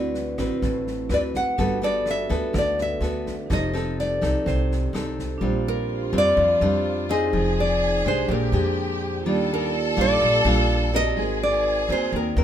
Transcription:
Already playing: upright bass D2, nylon-string guitar D3 C4 F#4 B4 D5, vibraphone C4 E4 F#4 B4
0.14 snare
0.38 upright bass A1, nylon-string guitar C4 F#4 B4, kick, cross-stick, snare
0.62 upright bass A1, nylon-string guitar A2, kick, snare
0.87 snare
1.09 upright bass D2, nylon-string guitar C4 F#4 B4, cross-stick, snare
1.14 nylon-string guitar D5
1.34 nylon-string guitar F#5, kick, snare
1.56 upright bass G1, nylon-string guitar G3 B3 F#4 A4, vibraphone D4 F#4 A4, kick, snare
1.63 vibraphone B4
1.82 nylon-string guitar B3 F#4 A4 D5, snare
2.06 cross-stick, snare
2.11 nylon-string guitar E5
2.29 upright bass D2, nylon-string guitar B3 F#4 A4, kick, snare
2.53 upright bass D2, nylon-string guitar D3, kick, cross-stick, snare
2.58 nylon-string guitar D5
2.78 snare
2.82 nylon-string guitar E5
3.00 upright bass D2, nylon-string guitar B3 F#4 A4, vibraphone D4 F#4 A4 B4, snare
3.26 kick, snare
3.46 upright bass F1, nylon-string guitar F3 C4, vibraphone D#4 G4
3.50 nylon-string guitar D#4 A4 D#5, vibraphone A4 C5, kick, cross-stick, snare
3.73 nylon-string guitar C4 D#4 A4, snare
3.99 nylon-string guitar D5, snare
4.21 upright bass C2, nylon-string guitar C4 D#4 A4, kick, cross-stick, snare
4.46 upright bass C2, nylon-string guitar C3 C5, kick, snare
4.72 snare
4.93 upright bass C2, nylon-string guitar C4 D#4 A4, cross-stick, snare
5.18 kick, snare
5.38 upright bass A#1, nylon-string guitar A#2 G3 C4, vibraphone D4 F4 G4, violin section F4
5.42 nylon-string guitar D4, vibraphone C5
5.68 nylon-string guitar A#4
6.13 upright bass F2, nylon-string guitar G3 C4 D4
6.18 nylon-string guitar D5
6.37 upright bass F2, nylon-string guitar F3
6.61 upright bass F2, nylon-string guitar G3 C4 D4
6.84 vibraphone F4 C5
7.09 nylon-string guitar C4 D#4 G#4 D#5
7.30 upright bass F1, nylon-string guitar F3, vibraphone D#4 G#4
7.35 violin section G#4, vibraphone C5
7.60 nylon-string guitar D5
8.05 upright bass C2, nylon-string guitar G#3 D4 G4 C5
8.26 upright bass A#1, nylon-string guitar A#2, vibraphone D4 G4
8.30 violin section G4, nylon-string guitar A#4, vibraphone C5
8.52 upright bass F2, nylon-string guitar G#3 D4 G4
9.21 upright bass D#2, vibraphone A#3 F4 G4
9.26 nylon-string guitar D#3 G3 D4 F4, violin section A4, vibraphone D5
9.54 nylon-string guitar A#4
9.96 upright bass A#1, nylon-string guitar G3 D4 F4
10.01 nylon-string guitar D5
10.22 upright bass A#1, nylon-string guitar A#2
10.43 upright bass A#1, nylon-string guitar G3 D4 F4, vibraphone A#3 F4 G4 D5
10.94 nylon-string guitar C4 F#4 A#4 D#5
11.16 upright bass G#1, nylon-string guitar G#3, vibraphone D#4 F#4 A#4, violin section G#4
11.22 vibraphone C5
11.43 nylon-string guitar D5
11.89 upright bass D#2, nylon-string guitar C4 F#4 A#4 C5
12.12 upright bass D#2, nylon-string guitar D#3 A#4
12.37 upright bass D#2, nylon-string guitar C4 F#4 A#4

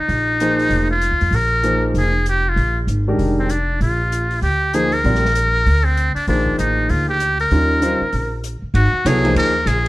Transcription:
0.00 muted trumpet D#4
0.08 upright bass A#1, open hi-hat
0.40 grand piano F3 A#3 D#4 G#4 C5, closed hi-hat
0.59 open hi-hat
0.69 upright bass F1, open hi-hat
0.91 muted trumpet F4
1.01 closed hi-hat
1.11 upright bass D#2
1.21 upright bass F2, open hi-hat
1.31 upright bass A#1, open hi-hat
1.35 muted trumpet A#4
1.63 grand piano F3 A#3 D#4 G#4 C5, closed hi-hat
1.94 upright bass F1, muted trumpet G#4, open hi-hat
2.26 muted trumpet G4, closed hi-hat
2.49 muted trumpet F4
2.56 upright bass A#1, open hi-hat
2.87 upright bass G#1, closed hi-hat
3.08 grand piano D#3 G#3 D4 G4 A#4
3.18 upright bass F1, open hi-hat
3.39 muted trumpet C4
3.49 muted trumpet D4, closed hi-hat
3.81 upright bass A#1, muted trumpet F4, open hi-hat
4.12 closed hi-hat
4.31 open hi-hat
4.42 upright bass D2, muted trumpet G4, open hi-hat
4.73 grand piano F3 A#3 D#4 G#4 C5, muted trumpet G#4, closed hi-hat
4.92 muted trumpet A#4, open hi-hat
5.04 upright bass A#1, grand piano G3 C4 F4 A#4 D5, open hi-hat
5.15 snare
5.25 snare
5.35 closed hi-hat
5.66 upright bass D2, open hi-hat
5.85 muted trumpet C4
5.97 closed hi-hat
6.15 muted trumpet D4, muted upright bass stroke, open hi-hat
6.27 upright bass A#1, grand piano D#3 F3 A#3 G#4 C5, muted trumpet D4, open hi-hat
6.47 kick
6.59 upright bass A1, muted trumpet D#4, closed hi-hat
6.89 upright bass D2, muted trumpet F4, open hi-hat
7.09 muted trumpet G4
7.20 closed hi-hat
7.39 muted trumpet A#4, open hi-hat
7.51 upright bass D#2, grand piano G3 C#4 D#4 F4 A#4, open hi-hat
7.82 grand piano G3 C#4 D#4 F4 C5, closed hi-hat
8.01 muted upright bass stroke
8.12 upright bass A#1, open hi-hat
8.44 closed hi-hat
8.62 muted upright bass stroke
8.74 upright bass G#1, muted trumpet F#4, ride
8.93 muted upright bass stroke
9.05 upright bass C2, grand piano F#3 B3 E4 A4 C#5, muted trumpet G#4, hi-hat pedal, ride
9.24 grand piano F3 A#3 D#4 G#4 C5, ride
9.35 upright bass D#2, muted trumpet A#4, ride
9.66 upright bass A#1, muted trumpet G#4, hi-hat pedal, ride

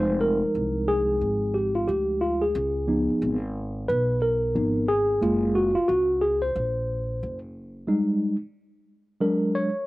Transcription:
Already playing: upright bass F1, tine electric piano F3 G#3 D#4 C5
0.21 tine electric piano A#4
0.42 muted upright bass stroke
0.55 upright bass C2
0.88 tine electric piano G#4
1.21 upright bass G#1
1.54 tine electric piano G4
1.75 tine electric piano F4
1.88 upright bass D2, tine electric piano G4
2.21 tine electric piano F4
2.41 tine electric piano G#4
2.55 upright bass C#2
2.87 tine electric piano F3 B3 D#4
3.09 muted upright bass stroke
3.22 upright bass G#1
3.88 upright bass B1, tine electric piano B4
4.22 tine electric piano A#4
4.55 upright bass G#1, tine electric piano F3 B3 D#4
4.88 tine electric piano G#4
5.21 upright bass F#1, tine electric piano G#3 A#3 F4
5.55 tine electric piano F#4
5.75 tine electric piano F4, muted upright bass stroke
5.88 upright bass C#2, tine electric piano F#4
6.21 tine electric piano G#4
6.42 tine electric piano C5
6.56 upright bass A#1
7.23 upright bass F#1
7.87 tine electric piano G3 G#3 D#4
9.20 tine electric piano F#3 G#3 D4 A#4
9.55 tine electric piano C#5

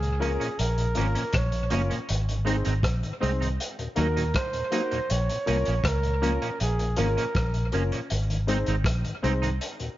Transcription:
Already playing: fingered electric bass C#2, flugelhorn G#4
0.03 tonewheel organ A#2, closed hi-hat
0.20 clean electric guitar F3 A#3 C#4, tonewheel organ F3 A#3 C#4, upright piano A#3 C#4 F4 A#4, flugelhorn G#4, closed hi-hat
0.40 tonewheel organ A#2, clean electric guitar F3 A#3 C#4, closed hi-hat
0.59 fingered electric bass A#1, flugelhorn A#4, closed hi-hat
0.77 tonewheel organ A#2, upright piano F4 A#4, closed hi-hat
0.95 fingered electric bass G#1, tonewheel organ F3 A#3 C#4, clean electric guitar F3 A#3 C#4, upright piano A#3 C#4 F4 A#4, closed hi-hat
1.15 tonewheel organ A#2, clean electric guitar F3 A#3 C#4, closed hi-hat
1.33 fingered electric bass A#1, flugelhorn C#5, kick, cross-stick, closed hi-hat
1.52 tonewheel organ A#2, closed hi-hat
1.70 fingered electric bass F#1, clean electric guitar F3 A#3 C#4, tonewheel organ F3 A#3 C#4, upright piano A#3 C#4 F4 A#4, closed hi-hat
1.90 tonewheel organ A#2, clean electric guitar F3 A#3 C#4, closed hi-hat
2.09 fingered electric bass G#1, closed hi-hat
2.29 tonewheel organ G#2 D#3, closed hi-hat
2.45 clean electric guitar G#3 C4 D#4, tonewheel organ G#3 C4 D#4, upright piano C4 D#4 G#4 C5, closed hi-hat
2.65 fingered electric bass G#1, clean electric guitar G#3 C4 D#4, closed hi-hat
2.83 fingered electric bass A#1, kick, cross-stick, closed hi-hat
3.03 tonewheel organ G#2 D#3, closed hi-hat
3.20 fingered electric bass C2, clean electric guitar G#3 C4 D#4, tonewheel organ G#3 C4 D#4, upright piano C4 D#4 G#4 C5, closed hi-hat
3.41 tonewheel organ G#2 D#3, clean electric guitar G#3 C4 D#4, closed hi-hat
3.60 closed hi-hat
3.78 tonewheel organ D#2 A#2, upright piano F#4 A#4, closed hi-hat
3.96 fingered electric bass D#2, clean electric guitar F#3 A#3 D#4, tonewheel organ F#3 A#3 D#4, upright piano A#3 D#4 F#4 A#4, flugelhorn A#4, closed hi-hat
4.16 tonewheel organ D#2 A#2, clean electric guitar F#3 A#3 D#4, closed hi-hat
4.34 flugelhorn C5, kick, cross-stick, closed hi-hat
4.53 tonewheel organ D#2 A#2, closed hi-hat
4.71 tonewheel organ F#3 A#3 D#4, clean electric guitar F#3 A#3 D#4, upright piano A#3 D#4 F#4 A#4, closed hi-hat
4.91 tonewheel organ D#2 A#2, clean electric guitar F#3 A#3 D#4, closed hi-hat
5.10 fingered electric bass A#1, flugelhorn C#5, closed hi-hat
5.29 tonewheel organ A#2, closed hi-hat
5.46 fingered electric bass C2, tonewheel organ F3 A#3 C#4, clean electric guitar F3 A#3 C#4, upright piano A#3 C#4 F4 A#4, closed hi-hat
5.65 fingered electric bass A#1, clean electric guitar F3 A#3 C#4, closed hi-hat
5.84 fingered electric bass C#2, flugelhorn A#4, kick, cross-stick, closed hi-hat
6.03 tonewheel organ A#2, closed hi-hat
6.21 clean electric guitar F3 A#3 C#4, tonewheel organ F3 A#3 C#4, upright piano A#3 C#4 F4 A#4, closed hi-hat
6.42 tonewheel organ A#2, clean electric guitar F3 A#3 C#4, closed hi-hat
6.60 fingered electric bass A#1, flugelhorn G#4, closed hi-hat
6.79 tonewheel organ A#2, upright piano F4 A#4, closed hi-hat
6.96 fingered electric bass G#1, clean electric guitar F3 A#3 C#4, tonewheel organ F3 A#3 C#4, upright piano A#3 C#4 F4 A#4, flugelhorn A#4, closed hi-hat
7.17 tonewheel organ A#2, clean electric guitar F3 A#3 C#4, closed hi-hat
7.35 fingered electric bass A#1, kick, cross-stick, closed hi-hat
7.54 tonewheel organ A#2, closed hi-hat
7.72 fingered electric bass F#1, clean electric guitar F3 A#3 C#4, tonewheel organ F3 A#3 C#4, upright piano A#3 C#4 F4 A#4, closed hi-hat
7.92 tonewheel organ A#2, clean electric guitar F3 A#3 C#4, closed hi-hat
8.10 fingered electric bass G#1, closed hi-hat
8.30 tonewheel organ G#2 D#3, closed hi-hat
8.47 tonewheel organ G#3 C4 D#4, clean electric guitar G#3 C4 D#4, upright piano C4 D#4 G#4 C5, closed hi-hat
8.66 fingered electric bass G#1, clean electric guitar G#3 C4 D#4, closed hi-hat
8.84 fingered electric bass A#1, kick, cross-stick, closed hi-hat
9.04 tonewheel organ G#2 D#3, closed hi-hat
9.23 fingered electric bass C2, clean electric guitar G#3 C4 D#4, tonewheel organ G#3 C4 D#4, upright piano C4 D#4 G#4 C5, closed hi-hat
9.42 tonewheel organ G#2 D#3, clean electric guitar G#3 C4 D#4, closed hi-hat
9.61 closed hi-hat
9.80 tonewheel organ D#2 A#2, upright piano F#4 A#4, closed hi-hat

